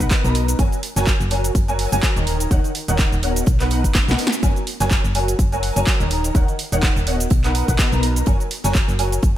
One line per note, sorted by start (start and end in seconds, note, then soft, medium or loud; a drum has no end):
0.00 0.09 B1 loud
0.00 0.20 B2 loud
0.00 0.20 D#4 medium
0.00 0.20 A#4 medium
0.00 0.20 B4 medium
0.00 0.20 F#5 loud
0.00 kick medium
0.00 closed hi-hat soft
0.00 closed hi-hat medium
0.00 shaker medium
0.11 kick loud
0.11 snare loud
0.11 clap loud
0.11 closed hi-hat medium
0.11 shaker medium
0.24 0.55 B1 loud
0.24 0.56 B2 medium
0.24 0.56 D#4 medium
0.24 0.56 A#4 medium
0.24 0.56 B4 medium
0.24 0.56 A#5 medium
0.24 closed hi-hat soft
0.24 shaker soft
0.35 closed hi-hat medium
0.35 open hi-hat loud
0.48 closed hi-hat medium
0.48 shaker medium
0.59 0.69 F#1 loud
0.59 0.76 F#3 medium
0.59 0.76 F#4 medium
0.59 0.76 A#4 medium
0.59 0.76 C#5 medium
0.59 0.76 G#5 medium
0.59 kick loud
0.59 closed hi-hat medium
0.59 shaker medium
0.72 closed hi-hat soft
0.72 shaker soft
0.83 closed hi-hat medium
0.83 open hi-hat loud
0.96 1.14 F#1 loud
0.96 1.22 F#3 medium
0.96 1.22 F#4 medium
0.96 1.22 A#4 medium
0.96 1.22 C#5 medium
0.96 1.22 G#5 loud
0.96 snare medium
0.96 closed hi-hat medium
0.96 shaker medium
1.07 kick loud
1.07 snare loud
1.07 clap loud
1.07 closed hi-hat medium
1.07 shaker medium
1.20 1.51 F#1 loud
1.20 closed hi-hat soft
1.20 shaker soft
1.31 1.48 F#3 medium
1.31 1.48 F#4 medium
1.31 1.48 A#4 medium
1.31 1.48 C#5 medium
1.31 1.48 G#5 medium
1.31 closed hi-hat medium
1.31 open hi-hat loud
1.44 closed hi-hat medium
1.44 shaker medium
1.55 1.87 F#1 medium
1.55 kick loud
1.55 closed hi-hat medium
1.55 shaker medium
1.68 1.88 F#3 loud
1.68 1.88 F#4 medium
1.68 1.88 A#4 medium
1.68 1.88 C#5 medium
1.68 1.88 G#5 loud
1.68 closed hi-hat soft
1.68 shaker soft
1.79 open hi-hat loud
1.79 open hi-hat medium
1.92 2.00 F#1 loud
1.92 2.12 F#3 loud
1.92 2.12 F#4 medium
1.92 2.12 A#4 medium
1.92 2.12 C#5 medium
1.92 2.12 G#5 loud
1.92 closed hi-hat medium
1.92 shaker medium
2.03 kick loud
2.03 snare loud
2.03 clap loud
2.03 closed hi-hat medium
2.03 closed hi-hat loud
2.03 shaker medium
2.16 2.47 D#1 loud
2.16 2.48 D#3 medium
2.16 2.48 D#4 medium
2.16 2.48 A#4 medium
2.16 2.48 C#5 medium
2.16 2.48 A#5 medium
2.16 closed hi-hat soft
2.16 shaker soft
2.27 closed hi-hat medium
2.27 open hi-hat loud
2.40 closed hi-hat soft
2.40 closed hi-hat medium
2.40 shaker medium
2.51 2.61 D#1 loud
2.51 2.68 D#3 medium
2.51 2.68 D#4 medium
2.51 2.68 A#4 medium
2.51 2.68 C#5 medium
2.51 2.68 F#5 medium
2.51 kick loud
2.51 closed hi-hat medium
2.51 shaker medium
2.64 closed hi-hat soft
2.64 shaker soft
2.75 closed hi-hat medium
2.75 open hi-hat loud
2.88 3.06 D#1 loud
2.88 3.14 D#3 medium
2.88 3.14 D#4 medium
2.88 3.14 A#4 medium
2.88 3.14 C#5 medium
2.88 3.14 F#5 loud
2.88 closed hi-hat medium
2.88 shaker medium
2.99 kick loud
2.99 snare loud
2.99 clap loud
2.99 closed hi-hat medium
2.99 shaker medium
3.12 3.43 D#1 loud
3.12 closed hi-hat soft
3.12 shaker soft
3.23 3.40 B2 medium
3.23 3.40 D#4 medium
3.23 3.40 A#4 medium
3.23 3.40 C#5 medium
3.23 3.40 F#5 medium
3.23 closed hi-hat medium
3.23 open hi-hat loud
3.36 closed hi-hat medium
3.36 shaker medium
3.46 3.86 B1 loud
3.46 kick loud
3.46 closed hi-hat medium
3.46 shaker medium
3.60 3.69 B2 loud
3.60 3.69 D#4 medium
3.60 3.69 A#4 medium
3.60 3.69 B4 medium
3.60 3.69 F#5 loud
3.60 clap soft
3.60 open hi-hat medium
3.60 shaker soft
3.71 3.88 B2 medium
3.71 3.88 D#4 medium
3.71 3.88 A#4 medium
3.71 3.88 B4 medium
3.71 3.88 F#5 loud
3.71 closed hi-hat medium
3.71 open hi-hat loud
3.84 4.02 F#1 medium
3.84 kick medium
3.84 closed hi-hat medium
3.84 closed hi-hat soft
3.84 shaker medium
3.94 kick loud
3.94 snare loud
3.94 snare medium
3.94 clap loud
3.94 closed hi-hat medium
3.94 shaker medium
4.08 4.16 B1 medium
4.08 4.24 B2 medium
4.08 4.24 D#4 medium
4.08 4.24 A#4 medium
4.08 4.24 B4 medium
4.08 4.24 F#5 medium
4.08 snare medium
4.08 closed hi-hat soft
4.08 shaker soft
4.18 snare loud
4.18 closed hi-hat medium
4.18 open hi-hat loud
4.27 snare loud
4.32 closed hi-hat medium
4.32 shaker medium
4.43 4.53 F#1 loud
4.43 4.60 F#3 medium
4.43 4.60 F#4 medium
4.43 4.60 A#4 medium
4.43 4.60 C#5 medium
4.43 4.60 G#5 medium
4.43 kick loud
4.43 closed hi-hat medium
4.43 shaker medium
4.56 closed hi-hat soft
4.56 shaker soft
4.67 closed hi-hat medium
4.67 open hi-hat loud
4.80 4.98 F#1 loud
4.80 5.06 F#3 medium
4.80 5.06 F#4 medium
4.80 5.06 A#4 medium
4.80 5.06 C#5 medium
4.80 5.06 G#5 loud
4.80 snare medium
4.80 closed hi-hat medium
4.80 shaker medium
4.91 kick loud
4.91 snare loud
4.91 clap loud
4.91 closed hi-hat medium
4.91 shaker medium
5.04 5.35 F#1 loud
5.04 closed hi-hat soft
5.04 shaker soft
5.15 5.32 F#3 medium
5.15 5.32 F#4 medium
5.15 5.32 A#4 medium
5.15 5.32 C#5 medium
5.15 5.32 G#5 medium
5.15 closed hi-hat medium
5.15 open hi-hat loud
5.28 closed hi-hat medium
5.28 shaker medium
5.39 5.71 F#1 medium
5.39 kick loud
5.39 closed hi-hat medium
5.39 shaker medium
5.52 5.72 F#3 loud
5.52 5.72 F#4 medium
5.52 5.72 A#4 medium
5.52 5.72 C#5 medium
5.52 5.72 G#5 loud
5.52 closed hi-hat soft
5.52 shaker soft
5.63 open hi-hat loud
5.63 open hi-hat medium
5.76 5.85 F#1 loud
5.76 5.96 F#3 loud
5.76 5.96 F#4 medium
5.76 5.96 A#4 medium
5.76 5.96 C#5 medium
5.76 5.96 G#5 loud
5.76 closed hi-hat medium
5.76 shaker medium
5.87 kick loud
5.87 snare loud
5.87 clap loud
5.87 closed hi-hat medium
5.87 shaker medium
6.00 6.31 D#1 loud
6.00 6.32 D#3 medium
6.00 6.32 D#4 medium
6.00 6.32 A#4 medium
6.00 6.32 C#5 medium
6.00 6.32 A#5 medium
6.00 closed hi-hat soft
6.00 shaker soft
6.10 closed hi-hat medium
6.10 open hi-hat loud
6.24 closed hi-hat soft
6.24 closed hi-hat medium
6.24 shaker medium
6.35 6.45 D#1 loud
6.35 6.52 D#3 medium
6.35 6.52 D#4 medium
6.35 6.52 A#4 medium
6.35 6.52 C#5 medium
6.35 6.52 F#5 medium
6.35 kick loud
6.35 closed hi-hat medium
6.35 shaker medium
6.48 closed hi-hat soft
6.48 shaker soft
6.59 closed hi-hat medium
6.59 open hi-hat loud
6.72 6.90 D#1 loud
6.72 6.98 D#3 medium
6.72 6.98 D#4 medium
6.72 6.98 A#4 medium
6.72 6.98 C#5 medium
6.72 6.98 F#5 loud
6.72 closed hi-hat medium
6.72 shaker medium
6.82 kick loud
6.82 snare loud
6.82 clap loud
6.82 closed hi-hat medium
6.82 shaker medium
6.96 7.27 D#1 loud
6.96 closed hi-hat soft
6.96 shaker soft
7.07 7.24 B2 medium
7.07 7.24 D#4 medium
7.07 7.24 A#4 medium
7.07 7.24 C#5 medium
7.07 7.24 F#5 medium
7.07 closed hi-hat medium
7.07 open hi-hat loud
7.20 closed hi-hat medium
7.20 shaker medium
7.30 7.63 B1 medium
7.30 kick loud
7.30 closed hi-hat loud
7.30 closed hi-hat medium
7.30 shaker medium
7.44 7.64 B2 loud
7.44 7.64 D#4 medium
7.44 7.64 A#4 medium
7.44 7.64 B4 medium
7.44 7.64 F#5 loud
7.44 clap soft
7.44 open hi-hat medium
7.44 shaker soft
7.55 closed hi-hat medium
7.55 open hi-hat loud
7.68 7.76 B1 loud
7.68 7.88 B2 loud
7.68 7.88 D#4 medium
7.68 7.88 A#4 medium
7.68 7.88 B4 medium
7.68 7.88 F#5 loud
7.68 kick medium
7.68 closed hi-hat soft
7.68 closed hi-hat medium
7.68 shaker medium
7.79 kick loud
7.79 snare loud
7.79 clap loud
7.79 closed hi-hat medium
7.79 shaker medium
7.92 8.23 B1 medium
7.92 8.24 B2 medium
7.92 8.24 D#4 medium
7.92 8.24 A#4 medium
7.92 8.24 B4 medium
7.92 8.24 A#5 medium
7.92 closed hi-hat soft
7.92 shaker soft
8.03 closed hi-hat medium
8.03 open hi-hat loud
8.16 closed hi-hat medium
8.16 shaker medium
8.26 8.37 F#1 loud
8.26 8.44 F#3 medium
8.26 8.44 F#4 medium
8.26 8.44 A#4 medium
8.26 8.44 C#5 medium
8.26 8.44 G#5 medium
8.26 kick loud
8.26 closed hi-hat medium
8.26 shaker medium
8.40 closed hi-hat soft
8.40 shaker soft
8.51 closed hi-hat medium
8.51 open hi-hat loud
8.64 8.82 F#1 loud
8.64 8.90 F#3 medium
8.64 8.90 F#4 medium
8.64 8.90 A#4 medium
8.64 8.90 C#5 medium
8.64 8.90 G#5 medium
8.64 snare medium
8.64 closed hi-hat soft
8.64 shaker medium
8.75 kick loud
8.75 snare loud
8.75 clap loud
8.75 closed hi-hat medium
8.75 shaker medium
8.88 9.19 F#1 loud
8.88 closed hi-hat soft
8.88 shaker soft
8.99 9.16 F#3 medium
8.99 9.16 F#4 medium
8.99 9.16 A#4 medium
8.99 9.16 C#5 medium
8.99 9.16 G#5 medium
8.99 closed hi-hat medium
8.99 open hi-hat loud
9.12 closed hi-hat medium
9.12 shaker medium
9.23 9.38 F#1 medium
9.23 kick loud
9.23 closed hi-hat medium
9.23 shaker medium